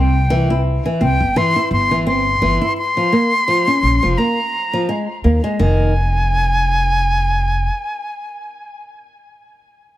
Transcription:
0.00 0.77 C2 loud
0.00 0.14 C4 medium
0.00 0.62 G5 medium
0.30 0.48 E3 loud
0.50 0.83 E4 medium
0.86 1.00 E3 medium
1.01 1.15 C2 loud
1.01 1.20 C4 medium
1.01 1.39 G5 loud
1.20 1.32 G1 medium
1.36 1.54 E3 loud
1.36 1.72 C6 loud
1.56 1.89 E4 medium
1.71 2.35 G1 medium
1.71 2.05 C6 loud
1.91 2.06 E3 medium
2.07 2.25 C4 medium
2.07 2.73 C6 loud
2.41 2.56 G1 medium
2.41 2.60 E3 loud
2.61 2.77 E4 medium
2.77 4.19 C6 loud
2.97 3.12 F3 medium
3.12 3.31 A#3 medium
3.48 3.66 F3 loud
3.67 4.01 C#4 medium
3.83 3.97 A#1 medium
4.03 4.14 F1 medium
4.03 4.17 F3 medium
4.18 4.37 A#3 medium
4.18 5.24 A#5 loud
4.73 4.87 F3 medium
4.89 5.07 G#3 medium
5.24 5.39 D#2 medium
5.24 5.42 A#3 medium
5.44 5.58 G#3 loud
5.59 7.67 F1 loud
5.59 5.92 D#3 medium
5.59 8.83 G#5 loud

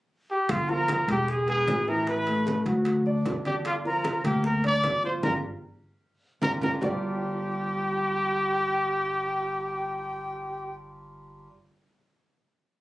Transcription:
0.31 0.52 G4 medium
0.49 1.05 G1 medium
0.49 0.72 F4 medium
0.49 0.70 F5 medium
0.49 high bongo medium
0.49 high conga soft
0.49 high timbale loud
0.68 1.01 F3 medium
0.68 1.02 F4 medium
0.68 1.09 A#4 medium
0.68 1.08 A#5 medium
0.68 high bongo soft
0.68 high conga soft
0.88 high bongo medium
0.88 high conga medium
0.88 high timbale medium
0.88 low timbale medium
1.08 1.64 E1 medium
1.08 1.41 G#3 medium
1.08 1.31 G4 medium
1.08 1.41 G#4 medium
1.08 1.30 G5 medium
1.08 high timbale medium
1.28 1.49 G#4 medium
1.28 1.47 G#5 medium
1.28 high bongo medium
1.28 high conga soft
1.48 1.81 B3 medium
1.48 1.90 G#4 loud
1.48 1.81 B4 medium
1.48 1.90 G#5 medium
1.48 high bongo soft
1.48 high conga soft
1.48 high timbale medium
1.67 2.60 A1 medium
1.67 high bongo soft
1.67 low bongo medium
1.67 high conga medium
1.67 high timbale medium
1.67 low timbale medium
1.88 2.04 E3 medium
1.88 2.04 E4 medium
1.88 2.08 A#4 medium
1.88 2.08 A#5 medium
1.88 high bongo soft
1.88 high conga soft
2.07 2.24 E3 medium
2.07 2.24 E4 medium
2.07 2.64 B4 medium
2.07 2.63 B5 medium
2.07 high bongo medium
2.07 high conga soft
2.07 high timbale medium
2.27 2.60 A3 medium
2.27 2.60 A4 medium
2.27 high bongo soft
2.27 high conga soft
2.27 high timbale medium
2.47 high bongo medium
2.47 high conga medium
2.47 low timbale medium
2.66 3.22 D2 loud
2.66 3.00 F#3 medium
2.66 3.00 F#4 medium
2.66 high conga soft
2.66 high timbale medium
2.85 high bongo medium
2.85 high conga soft
2.85 high timbale medium
3.06 3.39 D4 medium
3.06 3.39 D5 medium
3.06 high bongo soft
3.06 high conga soft
3.25 4.19 G1 medium
3.25 high bongo soft
3.25 low bongo medium
3.25 high conga medium
3.25 high timbale medium
3.25 low timbale medium
3.45 3.78 D4 medium
3.45 3.55 G4 medium
3.45 3.78 D5 medium
3.45 3.52 G5 medium
3.45 high bongo soft
3.45 high conga medium
3.45 high timbale medium
3.65 3.75 F4 medium
3.65 3.72 F5 medium
3.65 high bongo medium
3.65 high conga soft
3.65 high timbale loud
3.85 4.18 F3 medium
3.85 4.18 F4 medium
3.85 4.23 A#4 medium
3.85 4.22 A#5 medium
3.85 high bongo soft
3.85 high conga soft
4.04 high bongo medium
4.04 high conga medium
4.04 high timbale medium
4.04 low timbale medium
4.24 4.80 D2 medium
4.24 4.57 A#3 medium
4.24 4.44 G4 medium
4.24 4.57 A#4 medium
4.24 4.43 G5 medium
4.24 high timbale medium
4.44 4.64 A#4 medium
4.44 4.64 A#5 medium
4.44 high bongo medium
4.44 high conga soft
4.64 4.97 D4 medium
4.64 4.97 D5 medium
4.64 5.02 D5 loud
4.64 5.02 D6 medium
4.64 high bongo soft
4.64 high conga soft
4.64 high timbale medium
4.83 5.21 G1 medium
4.83 high bongo soft
4.83 low bongo medium
4.83 high conga medium
4.83 high timbale medium
4.83 low timbale medium
5.04 5.20 F3 medium
5.04 5.20 F4 medium
5.04 5.14 C5 medium
5.04 5.11 C6 medium
5.04 high bongo soft
5.04 high conga soft
5.23 5.38 G1 loud
5.23 5.36 D4 medium
5.23 5.36 F4 medium
5.23 5.36 G4 medium
5.23 5.34 A#4 medium
5.23 5.36 A#5 loud
5.23 low bongo loud
5.23 high conga loud
5.23 high timbale medium
6.42 6.57 G1 medium
6.42 6.55 D4 medium
6.42 6.55 F4 medium
6.42 6.55 G4 medium
6.42 6.52 A#4 loud
6.42 6.55 A#5 medium
6.42 low bongo loud
6.42 high conga medium
6.42 high timbale loud
6.61 6.77 G1 medium
6.61 6.76 D4 medium
6.61 6.76 F4 loud
6.61 6.76 G4 medium
6.61 6.72 A#4 medium
6.61 6.75 A#5 medium
6.61 low bongo medium
6.61 high conga medium
6.61 high timbale loud
6.81 11.45 G1 loud
6.81 11.46 G3 medium
6.81 11.46 D4 medium
6.81 11.46 F4 medium
6.81 10.76 G4 loud
6.81 11.46 G4 medium
6.81 11.46 A#4 medium
6.81 11.46 D5 loud
6.81 10.76 G5 medium
6.81 low bongo medium
6.81 low conga medium
6.81 low timbale loud

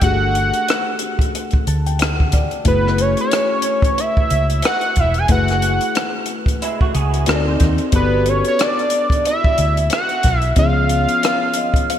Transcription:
0.02 0.50 G1 medium
0.02 2.61 A3 medium
0.02 2.62 D4 soft
0.02 2.62 F#4 soft
0.02 2.63 G4 soft
0.02 0.11 G#4 soft
0.02 1.30 F#5 loud
0.02 kick medium
0.02 closed hi-hat medium
0.12 2.66 A4 medium
0.35 closed hi-hat medium
0.54 closed hi-hat soft
0.69 cross-stick medium
0.69 closed hi-hat medium
0.99 closed hi-hat medium
1.19 kick medium
1.19 closed hi-hat soft
1.35 closed hi-hat medium
1.51 muted fingered electric bass stroke soft
1.51 kick medium
1.51 closed hi-hat soft
1.67 2.48 D2 medium
1.67 1.85 A5 medium
1.67 closed hi-hat soft
1.87 1.99 G5 medium
1.87 closed hi-hat soft
1.99 2.31 F#5 medium
1.99 cross-stick loud
1.99 closed hi-hat medium
2.20 kick medium
2.32 2.64 D5 medium
2.32 kick medium
2.32 cross-stick soft
2.32 closed hi-hat medium
2.51 closed hi-hat soft
2.65 3.14 F#1 medium
2.65 5.25 A3 medium
2.65 5.25 E4 soft
2.65 5.26 F#4 soft
2.65 5.26 G#4 soft
2.65 3.02 B4 medium
2.65 5.26 B4 medium
2.65 kick medium
2.65 closed hi-hat medium
2.87 cross-stick soft
2.98 3.19 C#5 medium
2.98 closed hi-hat soft
3.17 4.01 C#5 medium
3.17 closed hi-hat soft
3.31 cross-stick loud
3.31 closed hi-hat medium
3.62 closed hi-hat medium
3.82 kick medium
3.82 closed hi-hat soft
3.98 4.64 E5 medium
3.98 closed hi-hat medium
4.17 muted fingered electric bass stroke soft
4.17 kick medium
4.30 4.60 C#2 medium
4.30 closed hi-hat medium
4.50 closed hi-hat soft
4.62 5.01 F#5 loud
4.62 cross-stick loud
4.62 closed hi-hat medium
4.81 closed hi-hat soft
4.96 5.27 E1 medium
4.96 5.20 E5 medium
4.96 kick medium
4.96 closed hi-hat medium
5.14 5.30 G#5 loud
5.14 closed hi-hat soft
5.28 5.78 F#1 medium
5.28 7.23 A3 medium
5.28 7.23 E4 soft
5.28 7.23 F#4 soft
5.28 7.24 G#4 soft
5.28 7.24 B4 medium
5.28 6.58 F#5 medium
5.28 kick medium
5.28 closed hi-hat medium
5.48 cross-stick soft
5.48 closed hi-hat soft
5.62 closed hi-hat soft
5.81 closed hi-hat soft
5.95 cross-stick loud
5.95 closed hi-hat medium
6.26 closed hi-hat medium
6.46 kick medium
6.46 closed hi-hat soft
6.62 6.80 G#3 medium
6.62 6.80 E4 medium
6.62 closed hi-hat medium
6.81 6.94 A3 medium
6.81 6.94 F#4 medium
6.81 muted fingered electric bass stroke soft
6.81 kick medium
6.95 7.24 C#2 medium
6.95 7.26 B3 medium
6.95 7.26 G#4 medium
6.95 closed hi-hat medium
7.14 closed hi-hat soft
7.26 7.57 D2 medium
7.26 7.93 C4 medium
7.26 7.46 C4 medium
7.26 7.93 D#4 medium
7.26 7.92 F#4 medium
7.26 7.46 A4 medium
7.26 7.94 A4 medium
7.26 7.35 C5 medium
7.26 cross-stick loud
7.26 closed hi-hat medium
7.35 7.94 D5 medium
7.47 7.91 D#4 medium
7.47 7.91 C5 medium
7.60 7.78 D#2 medium
7.60 kick medium
7.60 cross-stick soft
7.60 closed hi-hat medium
7.78 closed hi-hat soft
7.92 8.41 G1 medium
7.92 10.52 B3 medium
7.92 10.53 F#4 soft
7.92 10.53 G4 soft
7.92 10.53 A4 medium
7.92 8.30 B4 medium
7.92 10.54 D5 medium
7.92 kick medium
7.92 closed hi-hat medium
8.26 8.46 C#5 medium
8.26 closed hi-hat soft
8.45 8.63 C#5 medium
8.45 closed hi-hat soft
8.59 9.26 D5 medium
8.59 cross-stick loud
8.59 closed hi-hat medium
8.79 closed hi-hat soft
8.90 closed hi-hat medium
9.10 kick medium
9.10 closed hi-hat soft
9.25 9.88 E5 loud
9.25 closed hi-hat medium
9.44 muted fingered electric bass stroke soft
9.44 kick medium
9.58 9.88 D2 medium
9.58 closed hi-hat medium
9.77 closed hi-hat soft
9.90 10.39 F#5 loud
9.90 cross-stick loud
9.90 closed hi-hat medium
10.09 closed hi-hat soft
10.23 10.54 B1 medium
10.23 kick medium
10.23 cross-stick soft
10.23 closed hi-hat medium
10.39 10.54 E5 loud
10.39 closed hi-hat soft
10.56 11.05 C#2 medium
10.56 11.99 B3 medium
10.56 11.99 C#4 medium
10.56 10.65 E4 soft
10.56 11.99 G#4 soft
10.56 11.99 C#5 medium
10.56 11.99 F5 loud
10.56 kick medium
10.56 closed hi-hat medium
10.64 11.99 F3 soft
10.89 closed hi-hat medium
11.09 closed hi-hat soft
11.23 cross-stick loud
11.23 closed hi-hat medium
11.54 11.87 D#5 medium
11.54 closed hi-hat medium
11.74 kick medium
11.74 closed hi-hat soft
11.90 11.99 F5 medium
11.90 closed hi-hat medium

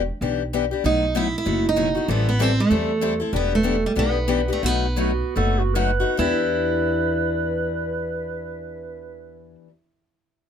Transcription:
0.21 0.71 B1 medium
0.21 0.42 E3 medium
0.21 0.42 B3 medium
0.21 0.42 D4 medium
0.21 0.42 G4 medium
0.53 0.64 E3 medium
0.53 0.64 B3 medium
0.53 0.64 D4 medium
0.53 0.65 G4 medium
0.71 0.84 B3 soft
0.71 0.84 D4 soft
0.71 0.83 G4 medium
0.84 1.34 B1 medium
0.84 1.04 B2 medium
0.84 1.04 F#3 medium
0.84 1.04 A3 medium
0.84 1.05 D#4 medium
0.84 1.14 D#4 medium
0.84 1.05 F#4 medium
1.15 1.26 B2 medium
1.15 1.26 F#3 medium
1.15 1.26 A3 medium
1.15 1.26 D#4 medium
1.15 1.35 E4 medium
1.15 1.26 F#4 medium
1.38 1.66 E4 medium
1.45 1.96 F#1 medium
1.45 1.66 B2 medium
1.45 1.66 F#3 medium
1.45 1.66 A3 medium
1.45 1.66 D#4 medium
1.45 1.66 F#4 medium
1.69 2.10 D#4 medium
1.76 1.88 B2 medium
1.76 1.88 F#3 medium
1.76 1.88 A3 medium
1.76 1.88 D#4 medium
1.76 1.88 F#4 medium
1.95 2.08 A3 soft
1.95 2.08 D#4 soft
1.95 2.07 F#4 soft
2.08 2.58 A1 medium
2.08 2.28 E3 medium
2.08 2.28 G3 medium
2.08 2.27 B3 medium
2.08 2.28 C4 medium
2.08 2.29 E4 medium
2.08 2.29 A4 medium
2.29 2.42 B3 medium
2.39 2.50 E3 medium
2.39 2.51 G3 medium
2.39 2.51 C4 medium
2.39 2.60 C4 medium
2.39 2.51 E4 medium
2.39 2.51 A4 medium
2.60 3.18 A3 medium
2.71 3.20 E2 medium
2.71 2.91 E3 medium
2.71 2.91 G3 medium
2.71 2.91 C4 medium
2.71 2.91 E4 medium
2.71 2.91 A4 medium
3.01 3.13 E3 medium
3.01 3.13 G3 medium
3.01 3.13 C4 medium
3.01 3.13 E4 medium
3.01 3.13 A4 medium
3.20 3.33 C4 soft
3.20 3.33 E4 medium
3.20 3.32 A4 medium
3.33 3.83 E1 medium
3.33 3.53 E3 medium
3.33 3.53 B3 medium
3.33 3.52 B3 medium
3.33 3.53 D4 medium
3.33 3.53 G4 medium
3.55 3.83 A3 medium
3.63 3.75 E3 medium
3.63 3.75 B3 medium
3.63 3.75 D4 medium
3.63 3.76 G4 medium
3.86 3.91 G3 medium
3.96 4.50 B1 medium
3.96 4.17 E3 medium
3.96 4.17 B3 medium
3.96 4.52 B3 medium
3.96 4.17 D4 medium
3.96 4.17 G4 medium
4.28 4.40 E3 medium
4.28 4.40 B3 medium
4.28 4.41 D4 medium
4.28 4.41 G4 medium
4.48 4.63 B3 soft
4.48 4.62 D4 soft
4.48 4.62 G4 medium
4.53 4.66 A3 medium
4.63 5.21 B1 medium
4.63 4.85 B2 medium
4.63 4.85 F#3 medium
4.63 4.85 A3 medium
4.63 5.77 B3 medium
4.63 4.86 D#4 medium
4.63 4.86 F#4 medium
4.96 5.10 B2 medium
4.96 5.10 F#3 medium
4.96 5.11 A3 medium
4.96 5.11 D#4 medium
4.96 5.11 F#4 medium
4.96 5.33 F#4 medium
5.36 6.02 F#1 medium
5.36 5.61 B2 medium
5.36 5.61 F#3 medium
5.36 5.61 A3 medium
5.36 5.61 D#4 medium
5.36 5.61 F#4 medium
5.36 5.61 A4 medium
5.59 5.76 F#4 medium
5.74 5.90 B2 medium
5.74 5.90 F#3 medium
5.74 5.90 A3 medium
5.74 5.90 D#4 medium
5.74 5.90 F#4 medium
5.74 6.18 B4 loud
6.00 6.18 A3 soft
6.00 6.18 D#4 soft
6.00 6.17 F#4 medium
6.17 9.55 E2 medium
6.17 9.67 E3 medium
6.17 9.69 B3 medium
6.17 9.70 D4 medium
6.17 9.55 E4 medium
6.17 9.71 G4 medium
6.17 9.55 B4 medium

